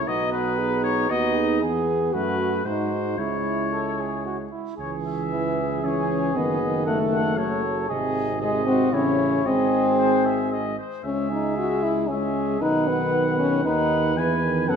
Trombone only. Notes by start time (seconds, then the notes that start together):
0.07 B3
1.10 B3
1.61 B3
2.14 A3
2.65 G#3
3.18 G#3
4.80 E3
5.83 E3
6.35 D#3
6.61 D#3
7.37 F#3
7.89 C3
8.40 C3
8.92 C#3
9.44 G#3
11.04 G#3
12.10 G#3
12.62 D#3
13.66 D#3
14.16 E3
14.43 D#3
14.69 C#3